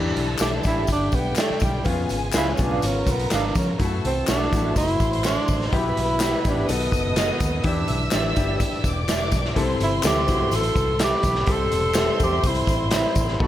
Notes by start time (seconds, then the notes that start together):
Already playing: E2 D3 E3 G3 D4 E4 G4 A4 A5
0.16 B1, closed hi-hat, muted conga
0.39 B1 D4 E4 G4 A4 D5 E5, snare, clap, closed hi-hat, tambourine, high conga
0.63 A1 D4 E4 G4, kick, snare, closed hi-hat, tambourine
0.76 G4 D5 E5
0.87 G1 G4 G5, kick, closed hi-hat, tambourine, low conga
0.92 D4
1.12 B1 B3, kick, closed hi-hat, tambourine
1.36 G4 D5 E5, snare, clap, closed hi-hat, tambourine, high conga
1.41 A3
1.50 muted fingered electric bass stroke
1.60 B1, kick, closed hi-hat, tambourine, high conga
1.65 G3
1.84 F2 C#3 B3 C#4 F4 G#4 G#5, kick, closed hi-hat, tambourine, muted conga
2.09 G#1, closed hi-hat, tambourine, muted conga
2.33 C#2 B3 C#4 E4 F4 G#4 B4 F5, snare, clap, closed hi-hat, tambourine, high conga
2.54 B3 C#4, tambourine
2.59 B1 D4 F4, kick, closed hi-hat
2.71 G#4 B4 F5, low conga
2.82 G#1 A#4 A#5, closed hi-hat, tambourine
2.87 C#4
3.06 B1, kick, closed hi-hat, tambourine, low conga
3.11 B3
3.20 closed hi-hat
3.31 G#1 D4 G#4 B4 F5, snare, clap, closed hi-hat, tambourine, high conga
3.55 F3 C#4, kick, closed hi-hat, tambourine, high conga
3.78 F#2 E3 A3 E4 F#4 A4 A5, kick, closed hi-hat, tambourine, muted conga
4.04 C2 C4, closed hi-hat, muted conga
4.27 B1 A3 D4 E4 F#4 A4 E5, snare, clap, closed hi-hat, tambourine, high conga
4.51 A1 A3 E4 F#4, kick, closed hi-hat, tambourine
4.64 F#4 A4 E5
4.76 F#1 E4 C5 C6, kick, closed hi-hat, tambourine, low conga
4.88 closed hi-hat
5.00 A1, kick, closed hi-hat, tambourine
5.13 closed hi-hat
5.24 D4 F#4 A4 E5, snare, clap, closed hi-hat, tambourine, high conga
5.48 A1, kick, open hi-hat, tambourine, high conga
5.61 snare
5.68 B3 D#4
5.72 B1 B2 B3 E4 G4 B4 B5, kick, closed hi-hat, muted conga
5.76 E4
5.97 B1, closed hi-hat, muted conga
6.19 B3 E4 G4 B4 E5, snare, clap, closed hi-hat, tambourine, high conga
6.44 A1 B3 D4 E4 G4, kick, closed hi-hat, tambourine
6.57 G4 B4 E5, low conga
6.68 B1 B2 D#3 B3 D#4 A4 D#5 D#6, closed hi-hat, tambourine
6.80 closed hi-hat
6.92 F#1, kick, closed hi-hat, tambourine, low conga
7.16 B3 F#4 A4 D#5, snare, clap, closed hi-hat, tambourine, high conga
7.40 D#2, kick, closed hi-hat, tambourine, high conga
7.63 E2 E3 D4 E4 G4 E5 E6, kick, closed hi-hat, muted conga
7.68 D4
7.88 B1, closed hi-hat, muted conga
8.11 A1 D4 E4 G4 D5 E5, snare, clap, closed hi-hat, tambourine, high conga
8.36 G1 D4 E4 G4, kick, closed hi-hat, tambourine
8.48 G4 D5 E5
8.60 kick, closed hi-hat, tambourine, muted conga, low conga
8.73 muted fingered electric bass stroke
8.84 E1 D5 D6, kick, closed hi-hat, tambourine
9.08 G4 D5 E5, snare, clap, closed hi-hat, tambourine, high conga
9.32 B1, kick, closed hi-hat, tambourine, high conga
9.45 snare
9.55 C2 C3 C4 E4 A4 C5 C6, kick, closed hi-hat, tambourine, muted conga
9.80 G1 E4, closed hi-hat, tambourine, muted conga
10.02 D2 C4 E4 G4 A4 E5, snare, clap, closed hi-hat, tambourine, high conga
10.06 G4
10.27 C2 C4 E4 F#4, kick, closed hi-hat, tambourine
10.40 G4 A4 E5, low conga
10.51 A1 A4, closed hi-hat, tambourine, muted conga
10.63 closed hi-hat
10.76 C2, kick, closed hi-hat, tambourine, low conga
10.99 G4 A4 B4 E5 B5, snare, clap, closed hi-hat, tambourine, high conga
11.04 G4
11.23 B1, kick, closed hi-hat, tambourine, high conga
11.35 snare
11.47 C2 C3 G3 C4 G4 A4 C5 C6, kick, closed hi-hat, tambourine, muted conga
11.52 A4
11.72 E1, closed hi-hat, tambourine, muted conga
11.95 C4 G4 A4 C5 E5, snare, clap, closed hi-hat, tambourine, high conga
12.19 E2 C4 G4 A4, kick, closed hi-hat, tambourine
12.24 G4
12.32 G4 C5 E5
12.43 C2, kick, closed hi-hat, tambourine, low conga
12.48 E4
12.55 closed hi-hat
12.67 A1, kick, closed hi-hat, tambourine
12.91 G4 C5 E5, snare, clap, closed hi-hat, tambourine, high conga
12.95 E4
13.15 A1, kick, closed hi-hat, tambourine, high conga
13.28 snare
13.39 B1 B2 D#3 B3 D#4 F#4 A4 B4 B5, kick, muted conga